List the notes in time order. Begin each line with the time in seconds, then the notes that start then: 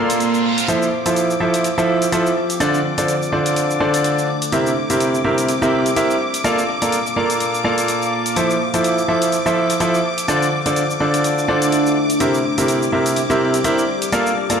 Already playing: A#3 F4 A4 A#4 D5 F5 C6, reverse cymbal
0.10 closed hi-hat, cabasa
0.20 closed hi-hat, cabasa
0.34 cabasa
0.58 closed hi-hat, cabasa
0.68 F3 E4 F4 A4 C5 E5 D6, closed hi-hat, cabasa
0.82 cabasa
1.06 F3 E4 F4 A4 C5 E5, closed hi-hat, cabasa
1.13 G5, closed hi-hat, cabasa
1.30 cabasa
1.38 F3 E4 F4 A4 C5 E5
1.54 closed hi-hat, cabasa
1.64 closed hi-hat, cabasa
1.78 F3 E4 F4 A4 C5 E5, cabasa
2.02 closed hi-hat, cabasa
2.12 F3 E4 F4 A4 C5 E5, closed hi-hat, cabasa
2.27 cabasa
2.50 closed hi-hat, cabasa
2.60 D3 D4 F4 A4 C5 D5, closed hi-hat, cabasa
2.74 A4, cabasa
2.98 D3 D4 F4 A4 C5 D5, closed hi-hat, cabasa
3.08 closed hi-hat, cabasa
3.22 cabasa
3.32 D3 D4 F4 A4 C5 D5
3.36 E5
3.46 closed hi-hat, cabasa
3.56 closed hi-hat, cabasa
3.70 cabasa
3.80 D3 D4 F4 A4 C5 D5
3.94 closed hi-hat, cabasa
4.04 closed hi-hat, cabasa
4.19 cabasa
4.29 C4
4.42 closed hi-hat, cabasa
4.46 G4
4.52 C3 E4 G4 A#4 C5 E5, closed hi-hat, cabasa
4.67 cabasa
4.90 C3 E4 G4 A#4 C5 E5, closed hi-hat, cabasa
5.00 closed hi-hat, cabasa
5.15 D5, cabasa
5.24 C3 E4 G4 A#4 C5 E5
5.38 closed hi-hat, cabasa
5.49 closed hi-hat, cabasa
5.62 C3 E4 G4 A#4 C5 E5, cabasa
5.86 closed hi-hat, cabasa
5.96 E4 G4 A#4 C5 E5, closed hi-hat, cabasa
6.11 cabasa
6.20 A#3
6.33 F5, closed hi-hat, cabasa
6.44 A#3 F4 A4 A#4 D5 F5, closed hi-hat, cabasa
6.59 cabasa
6.82 A#3 F4 A4 A#4 D5 F5, closed hi-hat, cabasa
6.92 closed hi-hat, cabasa
7.07 cabasa
7.16 A#3 F4 A4 A#4 D5 F5 C6
7.30 closed hi-hat, cabasa
7.40 closed hi-hat, cabasa
7.54 cabasa
7.64 A#3 F4 A4 A#4 D5 F5
7.78 closed hi-hat, cabasa
7.88 closed hi-hat, cabasa
8.02 cabasa
8.26 closed hi-hat, cabasa
8.36 F3 E4 F4 A4 C5 E5, closed hi-hat, cabasa
8.50 cabasa
8.74 F3 E4 F4 A4 C5 E5, closed hi-hat, cabasa
8.84 closed hi-hat, cabasa
8.95 C5, cabasa
9.08 F3 E4 F4 A4 C5 E5
9.22 G5, closed hi-hat, cabasa
9.32 closed hi-hat, cabasa
9.46 F3 E4 F4 A4 C5 E5, cabasa
9.70 closed hi-hat, cabasa
9.80 F3 E4 F4 A4 C5 E5, closed hi-hat, cabasa
9.94 cabasa
10.18 closed hi-hat, cabasa
10.28 D3 D4 F4 A4 C5 D5, closed hi-hat, cabasa
10.42 A4 E5, cabasa
10.66 D3 D4 F4 A4 C5 D5, closed hi-hat, cabasa
10.76 closed hi-hat, cabasa
10.90 cabasa
11.00 D3 D4 F4 A4 C5 D5
11.14 closed hi-hat, cabasa
11.24 closed hi-hat, cabasa
11.38 cabasa
11.48 D3 D4 F4 A4 C5 D5
11.62 closed hi-hat, cabasa
11.72 closed hi-hat, cabasa
11.86 cabasa
11.96 C4
12.10 closed hi-hat, cabasa
12.20 C3 E4 G4 A#4 C5 E5, closed hi-hat, cabasa
12.34 cabasa
12.40 G4
12.58 C3 E4 G4 A#4 C5 E5, closed hi-hat, cabasa
12.68 closed hi-hat, cabasa
12.74 D5
12.83 cabasa
12.92 C3 E4 G4 A#4 C5 E5
13.06 closed hi-hat, cabasa
13.16 closed hi-hat, cabasa
13.30 C3 E4 G4 A#4 C5 E5, cabasa
13.54 closed hi-hat, cabasa
13.64 E4 G4 A#4 C5 E5, closed hi-hat, cabasa
13.79 cabasa
13.88 A#4
14.02 closed hi-hat, cabasa
14.12 A#3 F4 A4 A#4 D5 F5, closed hi-hat, cabasa
14.27 cabasa
14.50 A#3 F4 A4 A#4 D5 F5, closed hi-hat, cabasa